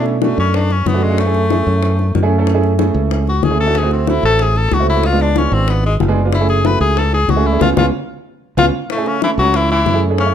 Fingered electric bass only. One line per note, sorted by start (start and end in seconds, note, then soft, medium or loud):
0.00 0.32 B2 medium
0.38 0.83 F#2 medium
0.86 1.61 F#2 medium
1.67 2.11 F#2 loud
2.15 2.89 F#2 medium
2.94 3.40 C#2 medium
3.43 4.18 D2 medium
4.23 4.68 A1 medium
4.71 5.46 C#2 medium
5.52 5.97 G#1 loud
6.00 6.75 F#1 medium
6.80 7.26 C#2 loud
7.28 7.59 C#2 medium
7.61 7.73 C#2 loud
7.77 7.89 C#2 medium
8.57 8.69 C#2 loud
9.38 9.83 C#2 loud
9.85 10.34 F#2 medium